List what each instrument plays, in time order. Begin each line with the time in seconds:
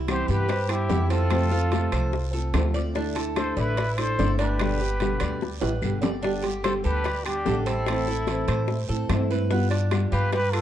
Already playing: upright bass C2, cuban tres E4
0.07 nylon-string guitar C3 E3 G3 B3 E4, trumpet G4, muted trumpet C5, high bongo, high timbale, low timbale, short guiro, claves
0.28 upright bass G2, cuban tres G4, trumpet G4, muted trumpet B4, high bongo, short guiro
0.48 cuban tres C5, muted nylon-string guitar stroke, high bongo, high timbale, long guiro
0.68 nylon-string guitar G3 B3 E4, trumpet E4, muted trumpet G4, high bongo, high timbale, claves
0.88 upright bass F2, nylon-string guitar C3 E3 G3 B3 E4, cuban tres G4, high bongo, low bongo, low timbale, short guiro
1.09 nylon-string guitar G3 B3 E4, cuban tres C4, trumpet F4, muted trumpet A4, high timbale, short guiro
1.30 nylon-string guitar C3 F3 A3 C4 F4, high bongo, high timbale, long guiro, claves
1.51 nylon-string guitar A3 C4 F4, cuban tres F4, high bongo
1.71 nylon-string guitar C3 F3 A3 C4 F4, high bongo, high timbale, low timbale, short guiro
1.92 upright bass C2, cuban tres C5, high bongo, high timbale, short guiro, claves
2.13 muted nylon-string guitar stroke, high bongo, long guiro
2.33 nylon-string guitar A3 C4 F4, cuban tres A4, high bongo
2.54 upright bass D2, nylon-string guitar C3 F3 A3 C4 F4, high bongo, low bongo, high timbale, low timbale, short guiro, claves
2.74 nylon-string guitar A3 C4 F4, cuban tres D5, short guiro
2.94 nylon-string guitar D3 A3 D4 E4, cuban tres D4, high bongo, long guiro
3.15 nylon-string guitar A3 D4 E4, cuban tres A4, high bongo, high timbale
3.36 nylon-string guitar D3 A3 D4 E4, trumpet A4, muted trumpet C5, high bongo, high timbale, low timbale, short guiro, claves
3.57 upright bass A1, trumpet E4, muted trumpet B4, cuban tres D5, high bongo, short guiro
3.76 cuban tres D5, muted nylon-string guitar stroke, high bongo, high timbale, long guiro
3.98 nylon-string guitar A3 D4 E4, trumpet A4, muted trumpet C5, high bongo, high timbale, claves
4.18 upright bass G1, nylon-string guitar D3 A3 D4 E4, cuban tres D5, high bongo, low bongo, low timbale, short guiro
4.38 nylon-string guitar A3 D4 E4, cuban tres D4, trumpet G4, muted trumpet B4, high timbale, short guiro
4.59 nylon-string guitar B2 D3 G3 B3 G4, high bongo, high timbale, long guiro, claves
4.80 nylon-string guitar G3 B3 G4, cuban tres G4, high bongo
5.00 nylon-string guitar B2 D3 G3 B3 G4, high bongo, high timbale, low timbale, short guiro
5.20 upright bass D2, cuban tres D5, high bongo, high timbale, short guiro, claves
5.41 muted nylon-string guitar stroke, high bongo, long guiro
5.61 upright bass A1, nylon-string guitar G3 B3 G4, cuban tres B4, high bongo, high timbale
5.81 upright bass G1, nylon-string guitar B2 D3 G3 B3 G4, short guiro, claves
6.02 nylon-string guitar G3 B3 G4, cuban tres D5, low bongo, low timbale, short guiro
6.22 nylon-string guitar D3 G3 B3 G4, cuban tres D4, high bongo, long guiro
6.42 nylon-string guitar G3 B3 G4, cuban tres G4, high bongo, high timbale
6.63 nylon-string guitar D3 G3 B3 G4, trumpet A4, muted trumpet C5, high bongo, high timbale, low timbale, short guiro, claves
6.84 upright bass D2, trumpet G4, cuban tres A4, muted trumpet B4, high bongo, short guiro
7.04 cuban tres D5, muted nylon-string guitar stroke, high bongo, high timbale, long guiro
7.24 nylon-string guitar G3 B3 G4, trumpet D4, muted trumpet G4, high bongo, high timbale, claves
7.45 upright bass A1, nylon-string guitar D3 G3 B3 G4, cuban tres A4, high bongo, low bongo, low timbale, short guiro
7.66 nylon-string guitar G3 B3 G4, cuban tres C4, trumpet E4, muted trumpet A4, high timbale, short guiro
7.86 nylon-string guitar E3 A3 C4 E4, high bongo, high timbale, long guiro, claves
8.07 nylon-string guitar A3 C4 E4, cuban tres E4, high bongo
8.27 nylon-string guitar E3 A3 C4, high bongo, high timbale, low timbale, short guiro
8.31 nylon-string guitar E4
8.48 upright bass A2, cuban tres C5, high bongo, high timbale, short guiro, claves
8.68 muted nylon-string guitar stroke, high bongo, long guiro
8.89 upright bass A2, nylon-string guitar A3 C4 E4, cuban tres A4, high bongo
9.09 upright bass G2, nylon-string guitar E3 A3 C4 E4, high bongo, low bongo, high timbale, low timbale, short guiro, claves
9.30 nylon-string guitar A3 C4 E4, cuban tres B4, short guiro
9.50 nylon-string guitar G3 B3 F4, cuban tres B3, high bongo, long guiro
9.70 nylon-string guitar B3 F4, cuban tres D4, high bongo, high timbale
9.91 nylon-string guitar G3 B3 F4, high bongo, high timbale, low timbale, short guiro, claves
10.12 upright bass G2, cuban tres F4, trumpet G4, muted trumpet B4, high bongo, short guiro
10.31 trumpet G4, cuban tres B4, muted trumpet B4, muted nylon-string guitar stroke, high bongo, high timbale, long guiro
10.51 trumpet F4, nylon-string guitar F4, muted trumpet A4, high bongo, high timbale, claves
10.55 nylon-string guitar B3